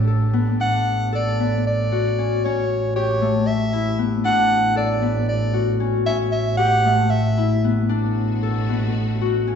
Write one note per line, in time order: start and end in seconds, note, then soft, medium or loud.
0.00 0.56 A1 medium
0.00 0.58 D3 medium
0.00 0.56 A3 medium
0.00 0.33 B3 medium
0.00 0.59 D4 medium
0.00 0.56 G4 medium
0.07 1.12 A4 medium
0.33 1.39 B3 medium
0.60 2.43 A1 medium
0.60 2.24 D4 medium
0.60 1.10 F#5 loud
1.13 3.32 A4 medium
1.13 1.63 D5 medium
1.40 3.98 B3 medium
1.67 2.46 D5 medium
1.92 3.02 F#4 medium
2.18 2.45 C#4 medium
2.43 4.24 A1 medium
2.43 4.30 C#4 medium
2.43 2.95 C#5 medium
2.96 5.31 G4 medium
2.96 3.49 C#5 medium
3.21 6.54 A3 medium
3.47 4.05 E5 medium
3.73 6.34 E4 medium
3.99 5.01 B3 medium
4.24 6.06 A1 medium
4.24 5.86 D4 medium
4.24 4.73 F#5 loud
4.76 6.96 A4 medium
4.76 5.25 D5 medium
5.02 7.64 B3 medium
5.29 5.76 D5 medium
5.53 6.65 F#4 medium
5.80 6.06 C#4 medium
6.06 7.90 A1 medium
6.06 7.95 C#4 medium
6.06 6.18 E5 medium
6.32 6.56 E5 medium
6.57 8.94 G4 medium
6.57 7.12 F#5 loud
6.85 9.55 A3 medium
7.10 7.70 E5 medium
7.37 9.55 E4 medium
7.64 8.69 B3 medium
7.89 9.55 A1 medium
7.89 9.55 B2 medium
7.89 9.55 A3 medium
7.89 9.53 D4 medium
7.89 9.55 F#4 medium
8.43 9.55 A4 medium
8.69 9.55 B3 medium
9.21 9.55 F#4 medium
9.47 9.55 C#4 medium